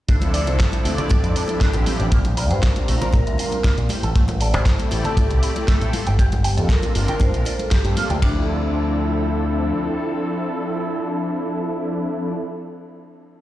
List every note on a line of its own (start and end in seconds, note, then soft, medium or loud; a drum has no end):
0.08 0.47 D2 loud
0.08 0.42 F3 medium
0.08 0.42 C4 medium
0.08 0.15 D4 loud
0.08 0.42 D4 medium
0.08 0.42 E4 medium
0.08 0.42 A4 loud
0.08 kick loud
0.08 closed hi-hat medium
0.21 closed hi-hat soft
0.21 high bongo medium
0.21 high conga medium
0.34 0.47 D5 loud
0.34 0.40 D5 medium
0.34 open hi-hat loud
0.47 0.56 C2 medium
0.47 0.69 F3 medium
0.47 0.69 C4 medium
0.47 0.69 D4 medium
0.47 0.70 E4 medium
0.47 0.70 A4 loud
0.47 0.86 C5 loud
0.47 closed hi-hat soft
0.47 high bongo medium
0.60 kick loud
0.60 snare loud
0.60 closed hi-hat medium
0.72 1.45 F3 medium
0.72 1.46 C4 medium
0.72 1.46 D4 medium
0.72 1.46 E4 medium
0.72 1.46 D5 medium
0.72 closed hi-hat soft
0.72 high conga medium
0.84 0.95 D2 medium
0.84 0.92 C4 medium
0.84 1.08 A4 medium
0.84 open hi-hat loud
0.84 high bongo medium
0.98 1.04 D5 medium
0.98 closed hi-hat soft
0.98 low conga medium
1.09 1.20 A1 loud
1.09 1.82 A4 medium
1.09 kick loud
1.09 closed hi-hat medium
1.09 high bongo medium
1.09 high conga loud
1.24 1.33 F2 loud
1.24 closed hi-hat soft
1.36 1.43 A4 medium
1.36 open hi-hat loud
1.48 2.10 F3 medium
1.48 2.10 C4 medium
1.48 2.11 D4 medium
1.48 2.11 E4 medium
1.48 2.11 G4 loud
1.48 closed hi-hat soft
1.48 high bongo medium
1.48 high conga medium
1.61 1.68 D4 loud
1.61 kick loud
1.61 snare loud
1.61 closed hi-hat medium
1.74 1.84 A1 loud
1.74 closed hi-hat soft
1.74 high bongo medium
1.86 1.93 C4 medium
1.86 muted picked electric bass stroke soft
1.86 open hi-hat loud
1.86 high conga medium
1.99 2.09 A1 medium
1.99 2.06 D5 medium
1.99 closed hi-hat soft
2.12 2.51 A#1 loud
2.12 2.19 A#3 loud
2.12 kick loud
2.12 closed hi-hat medium
2.12 high bongo medium
2.25 closed hi-hat soft
2.25 high conga medium
2.37 2.44 A#4 medium
2.37 2.51 D5 loud
2.37 open hi-hat loud
2.37 high bongo medium
2.50 2.60 G2 medium
2.50 2.73 G3 medium
2.50 2.73 C4 medium
2.50 2.73 D4 medium
2.50 2.73 F4 medium
2.50 2.73 A#4 medium
2.50 3.16 C5 loud
2.50 closed hi-hat soft
2.63 kick loud
2.63 snare loud
2.63 closed hi-hat medium
2.75 3.36 G3 medium
2.75 3.36 C4 medium
2.75 3.36 D4 medium
2.75 3.36 F4 medium
2.75 3.37 A#5 medium
2.75 closed hi-hat soft
2.75 high bongo medium
2.75 high conga medium
2.88 2.98 A#1 medium
2.88 2.95 A3 medium
2.88 open hi-hat loud
3.01 3.08 A#4 medium
3.01 closed hi-hat soft
3.01 high bongo medium
3.01 low conga medium
3.13 3.23 A#2 loud
3.13 3.86 A#4 medium
3.13 kick loud
3.13 closed hi-hat medium
3.13 high conga loud
3.27 3.36 D2 loud
3.27 closed hi-hat soft
3.38 3.55 G3 medium
3.38 3.55 C4 medium
3.38 3.55 D4 medium
3.38 3.46 F4 medium
3.38 3.55 F4 medium
3.38 3.55 A#4 medium
3.38 open hi-hat loud
3.38 high bongo medium
3.52 closed hi-hat soft
3.52 high conga medium
3.64 3.71 A#3 loud
3.64 kick loud
3.64 snare loud
3.64 closed hi-hat medium
3.64 high bongo medium
3.78 3.87 A#2 loud
3.78 closed hi-hat soft
3.89 3.97 G3 medium
3.89 4.00 A3 medium
3.89 4.00 C4 medium
3.89 4.00 E4 medium
3.89 4.00 G4 medium
3.89 4.00 C5 medium
3.89 muted picked electric bass stroke soft
3.89 open hi-hat loud
3.89 high conga loud
4.03 4.12 A1 medium
4.03 4.10 A4 medium
4.03 closed hi-hat soft
4.03 high bongo medium
4.16 4.54 A1 loud
4.16 4.22 A3 loud
4.16 kick loud
4.16 closed hi-hat medium
4.28 closed hi-hat soft
4.28 high bongo medium
4.28 high conga loud
4.40 4.48 A4 medium
4.40 4.46 D5 loud
4.40 open hi-hat loud
4.53 4.63 G2 medium
4.53 4.76 A3 medium
4.53 4.76 C4 medium
4.53 4.76 E4 medium
4.53 4.76 G4 medium
4.53 4.76 A4 medium
4.53 4.92 C5 loud
4.53 closed hi-hat soft
4.66 kick loud
4.66 snare loud
4.66 closed hi-hat medium
4.66 high bongo soft
4.78 5.52 A3 medium
4.78 5.52 C4 medium
4.78 5.53 E4 medium
4.78 5.53 G4 medium
4.78 5.53 D5 medium
4.78 closed hi-hat soft
4.78 high conga medium
4.91 5.01 A1 medium
4.91 4.99 G3 medium
4.91 5.16 A4 medium
4.91 open hi-hat loud
4.91 high bongo medium
5.04 5.11 A4 medium
5.04 closed hi-hat soft
5.04 low conga medium
5.17 5.27 A2 medium
5.17 5.89 A4 medium
5.17 kick loud
5.17 closed hi-hat medium
5.17 high conga loud
5.30 5.39 C2 loud
5.30 closed hi-hat soft
5.30 high bongo medium
5.42 5.49 E4 medium
5.42 open hi-hat loud
5.55 5.91 A3 medium
5.55 5.92 C4 medium
5.55 5.92 E4 medium
5.55 5.92 G4 medium
5.55 5.92 A4 loud
5.55 closed hi-hat soft
5.55 high bongo medium
5.55 high conga medium
5.68 5.75 A3 loud
5.68 kick loud
5.68 snare loud
5.68 closed hi-hat medium
5.81 5.90 A2 loud
5.81 closed hi-hat soft
5.93 6.00 F4 medium
5.93 muted picked electric bass stroke soft
5.93 open hi-hat loud
5.93 high bongo soft
5.93 high conga loud
6.07 6.16 G1 medium
6.07 6.13 G5 medium
6.07 closed hi-hat soft
6.19 6.25 G4 loud
6.19 kick loud
6.19 closed hi-hat medium
6.19 high bongo medium
6.32 closed hi-hat soft
6.32 high conga loud
6.44 6.57 G4 medium
6.44 6.51 G5 medium
6.44 open hi-hat loud
6.57 6.66 F2 medium
6.57 6.79 A#3 medium
6.57 6.80 C4 medium
6.57 6.80 D4 medium
6.57 6.80 F4 medium
6.57 6.70 A4 medium
6.57 6.80 A4 loud
6.57 closed hi-hat soft
6.57 high bongo medium
6.69 7.22 A#4 loud
6.69 kick loud
6.69 snare loud
6.69 closed hi-hat medium
6.82 7.43 A#3 medium
6.82 7.43 C4 medium
6.82 7.43 D4 medium
6.82 7.43 F4 medium
6.82 7.44 A#4 medium
6.82 closed hi-hat soft
6.82 high bongo medium
6.82 high conga medium
6.95 7.05 G1 medium
6.95 7.02 F4 medium
6.95 open hi-hat loud
7.08 7.15 G5 medium
7.08 closed hi-hat soft
7.08 low conga medium
7.20 7.30 G2 loud
7.20 7.61 C5 loud
7.20 kick loud
7.20 closed hi-hat medium
7.20 high bongo soft
7.20 high conga loud
7.34 7.43 A#1 loud
7.34 closed hi-hat soft
7.45 7.53 D5 medium
7.45 open hi-hat loud
7.45 high bongo medium
7.59 7.71 A4 medium
7.59 closed hi-hat soft
7.59 high conga medium
7.71 8.07 G4 medium
7.71 7.78 G4 loud
7.71 kick loud
7.71 snare loud
7.71 closed hi-hat medium
7.84 7.94 G2 loud
7.84 7.94 A#3 medium
7.84 7.94 C4 medium
7.84 7.94 D4 medium
7.84 7.94 F4 medium
7.84 7.94 A4 loud
7.84 closed hi-hat soft
7.84 high bongo medium
7.96 8.06 A#3 loud
7.96 8.07 C4 loud
7.96 8.07 D4 medium
7.96 8.07 F4 medium
7.96 8.04 F4 medium
7.96 8.07 A4 loud
7.96 muted picked electric bass stroke soft
7.96 open hi-hat loud
7.96 high conga medium
8.10 8.19 D2 medium
8.10 8.16 G5 medium
8.10 closed hi-hat soft
8.10 high bongo medium
8.21 9.71 D2 medium
8.21 12.33 F3 medium
8.21 12.34 C4 medium
8.21 12.35 D4 medium
8.21 8.46 D4 medium
8.21 12.35 E4 medium
8.21 12.36 A4 medium
8.21 kick loud
8.21 ride bell medium